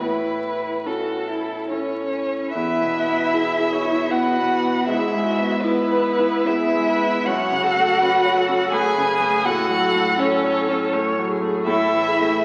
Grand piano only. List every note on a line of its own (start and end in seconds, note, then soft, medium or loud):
0.00 0.83 A2 soft
0.85 1.66 C#4 soft
0.85 1.66 E4 soft
0.85 1.67 A4 soft
1.71 2.51 C#4 soft
1.71 2.51 E4 soft
1.71 2.51 A4 soft
2.55 4.85 E2 soft
2.81 3.23 B2 soft
3.07 3.49 B3 soft
3.33 3.75 E4 soft
3.59 4.01 G#4 soft
3.86 4.28 E4 soft
4.12 4.53 B3 soft
4.38 4.79 B2 soft
4.63 4.88 B3 soft
4.88 7.22 G#2 soft
5.14 5.54 G#3 soft
5.39 5.80 B3 soft
5.64 6.08 E4 soft
5.91 6.37 B4 soft
6.19 6.64 E4 soft
6.47 6.90 B3 soft
6.75 7.16 G#3 soft
7.00 7.26 B3 soft
7.26 9.42 F#2 soft
7.51 7.91 C#3 soft
7.76 8.16 A3 soft
8.02 8.40 C#4 soft
8.24 8.64 C#5 soft
8.48 8.87 C#4 soft
8.72 9.11 A3 soft
8.97 9.36 C#3 soft
9.20 9.45 A3 soft
9.45 11.63 A2 medium
9.69 10.09 F#3 soft
9.94 10.33 A3 soft
10.18 10.58 C#4 soft
10.43 10.83 C#5 soft
10.68 11.08 C#4 soft
10.93 11.33 A3 soft
11.18 11.58 F#3 soft
11.41 11.67 A3 soft
11.66 12.45 A2 medium
11.92 12.37 E3 soft
12.20 12.45 A3 soft